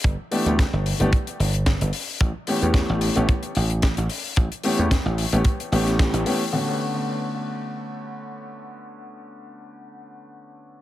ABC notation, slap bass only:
X:1
M:4/4
L:1/16
Q:"Swing 16ths" 1/4=111
K:Bm
V:1 name="Slap bass" clef=bass
G,,, z2 D,, z G,,, z G,,, z2 G,,,3 G,,, z2 | A,,, z2 E,, z A,,, z A,,, z2 A,,,3 A,,, z2 | A,,, z2 E,, z A,,, z A,,, z2 A,,,3 A,,, z2 | z16 |
z16 |]